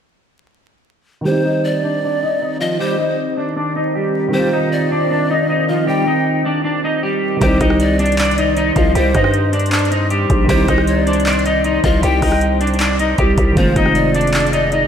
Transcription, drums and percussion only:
7.41 kick, closed hi-hat
7.61 kick, cross-stick, closed hi-hat
7.70 cross-stick
7.80 closed hi-hat
7.99 closed hi-hat
8.06 closed hi-hat
8.12 closed hi-hat
8.18 clap, closed hi-hat
8.25 closed hi-hat
8.31 closed hi-hat
8.38 closed hi-hat
8.57 closed hi-hat
8.76 kick, closed hi-hat
8.95 closed hi-hat
9.15 kick, cross-stick, closed hi-hat
9.24 cross-stick
9.34 closed hi-hat
9.53 closed hi-hat
9.59 closed hi-hat
9.66 closed hi-hat
9.72 clap, closed hi-hat
9.79 closed hi-hat
9.85 closed hi-hat
9.92 closed hi-hat
10.10 closed hi-hat
10.30 kick, closed hi-hat
10.49 kick, closed hi-hat
10.68 kick, cross-stick, closed hi-hat
10.78 cross-stick
10.87 closed hi-hat
11.07 closed hi-hat
11.13 closed hi-hat
11.20 closed hi-hat
11.26 clap, closed hi-hat
11.33 closed hi-hat
11.39 closed hi-hat
11.46 closed hi-hat
11.64 closed hi-hat
11.84 kick, closed hi-hat
12.03 closed hi-hat
12.22 kick, cross-stick, open hi-hat
12.32 cross-stick
12.41 closed hi-hat
12.61 closed hi-hat
12.67 closed hi-hat
12.74 closed hi-hat
12.80 clap, closed hi-hat
12.99 closed hi-hat
13.18 kick, closed hi-hat
13.38 kick, closed hi-hat
13.57 kick, closed hi-hat
13.76 kick, cross-stick, closed hi-hat
13.86 cross-stick
13.95 closed hi-hat
14.15 closed hi-hat
14.21 closed hi-hat
14.27 closed hi-hat
14.34 clap, closed hi-hat
14.40 closed hi-hat
14.47 closed hi-hat
14.53 closed hi-hat
14.72 closed hi-hat

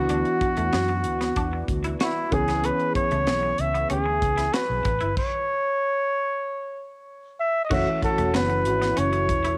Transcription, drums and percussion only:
0.09 closed hi-hat
0.25 closed hi-hat
0.41 kick, closed hi-hat
0.57 closed hi-hat
0.73 snare, closed hi-hat
0.88 closed hi-hat
1.04 closed hi-hat
1.21 snare, closed hi-hat
1.36 kick, closed hi-hat
1.68 kick, closed hi-hat
1.84 closed hi-hat
2.00 snare, closed hi-hat
2.32 kick, closed hi-hat
2.48 snare, closed hi-hat
2.64 closed hi-hat
2.80 closed hi-hat
2.95 kick, closed hi-hat
3.11 closed hi-hat
3.27 snare, closed hi-hat
3.58 closed hi-hat
3.75 closed hi-hat
3.90 closed hi-hat
4.22 kick, closed hi-hat
4.38 snare, closed hi-hat
4.54 snare, closed hi-hat
4.85 kick, closed hi-hat
5.01 closed hi-hat
5.17 kick, crash
7.71 kick, crash
8.02 kick, closed hi-hat
8.18 closed hi-hat
8.34 snare, closed hi-hat
8.50 closed hi-hat
8.65 closed hi-hat
8.82 snare, closed hi-hat
8.97 closed hi-hat
9.13 closed hi-hat
9.29 kick, closed hi-hat
9.44 closed hi-hat

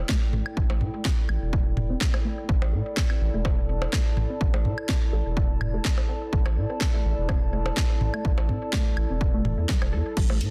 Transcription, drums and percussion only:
0.09 kick, snare
0.33 mid tom
0.46 claves
0.57 kick
0.70 percussion blips
0.81 mid tom
1.05 kick, snare
1.29 claves
1.53 kick
1.77 mid tom
2.01 kick, snare
2.14 percussion blips, claves
2.49 kick
2.62 percussion blips
2.97 kick, snare
3.10 claves
3.45 kick, percussion blips
3.82 percussion blips
3.93 kick, snare, claves
4.17 mid tom
4.41 kick
4.54 percussion blips
4.65 mid tom
4.78 claves
4.89 kick, snare
5.37 kick
5.61 mid tom, claves
5.85 kick, snare
5.98 percussion blips
6.33 kick
6.46 percussion blips, claves
6.81 kick, snare
7.29 kick, percussion blips, claves
7.66 percussion blips
7.77 kick, snare
8.01 mid tom
8.14 claves
8.25 kick
8.38 percussion blips
8.49 mid tom
8.73 kick, snare
8.97 claves
9.21 kick
9.45 mid tom
9.69 kick, snare
9.82 percussion blips, claves
10.17 kick, crash
10.30 percussion blips
10.41 open hi-hat

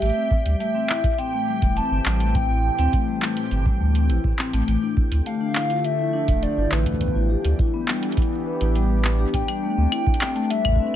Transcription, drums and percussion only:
0.02 closed hi-hat
0.06 closed hi-hat
0.09 closed hi-hat
0.13 closed hi-hat
0.31 kick
0.46 closed hi-hat
0.60 closed hi-hat
0.89 clap
1.04 kick, closed hi-hat
1.18 closed hi-hat
1.62 kick, closed hi-hat
1.77 closed hi-hat
2.06 clap
2.20 closed hi-hat
2.35 kick, closed hi-hat
2.79 closed hi-hat
2.93 kick, closed hi-hat
3.22 clap
3.37 closed hi-hat
3.51 closed hi-hat
3.66 kick
3.95 closed hi-hat
4.10 closed hi-hat
4.24 kick
4.39 clap
4.53 closed hi-hat
4.68 closed hi-hat
4.97 kick
5.12 closed hi-hat
5.26 closed hi-hat
5.55 clap
5.70 closed hi-hat
5.84 closed hi-hat
6.28 kick, closed hi-hat
6.43 closed hi-hat
6.72 clap
6.86 kick, closed hi-hat
6.94 kick
7.01 kick, closed hi-hat
7.08 kick
7.45 closed hi-hat
7.59 kick, closed hi-hat
7.88 clap
8.03 closed hi-hat
8.12 closed hi-hat
8.17 kick, closed hi-hat
8.22 closed hi-hat
8.61 closed hi-hat
8.75 closed hi-hat
9.05 clap
9.34 kick, closed hi-hat
9.48 closed hi-hat, claves
9.92 closed hi-hat, claves
10.07 kick
10.14 closed hi-hat
10.21 clap, claves
10.36 closed hi-hat
10.50 closed hi-hat
10.65 kick, closed hi-hat, claves
10.69 kick
10.72 kick
10.76 kick

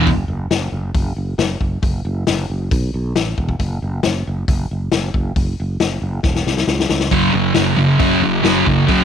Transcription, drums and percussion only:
0.07 kick, open hi-hat
0.51 snare, open hi-hat
0.95 kick, open hi-hat
1.39 snare, open hi-hat
1.61 kick
1.83 kick, open hi-hat
2.27 snare, open hi-hat
2.71 kick, open hi-hat
3.16 snare, open hi-hat
3.38 kick
3.49 kick
3.59 kick, open hi-hat
4.03 snare, open hi-hat
4.48 kick, open hi-hat
4.92 snare, open hi-hat
5.14 kick
5.36 kick, open hi-hat
5.80 snare, open hi-hat
6.23 kick, snare
6.35 snare
6.47 snare
6.57 snare
6.68 snare
6.80 snare
6.89 snare
7.00 snare
7.11 kick, open hi-hat
7.54 snare, open hi-hat
8.00 kick, open hi-hat
8.44 snare, open hi-hat
8.66 kick
8.88 kick, open hi-hat

